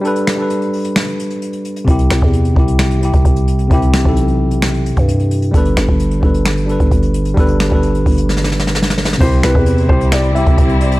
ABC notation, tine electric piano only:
X:1
M:4/4
L:1/16
Q:1/4=131
K:Clyd
V:1 name="Tine electric piano"
[G,DAB]2 z [G,DAB]4- [G,DAB] z8 | [C,CEG]4 z2 [C,CEG]3 z [C,CEG]4 z2 | [C,CEG]2 z [E,CEA]4- [E,CEA] z8 | [G,DAB]4 z2 [G,DAB]3 z [G,DAB]4 z2 |
[G,DAB]2 z [G,DAB]4- [G,DAB] z8 | [C,CEG]4 z2 [C,CEG]3 z [C,CEG]4 z2 |]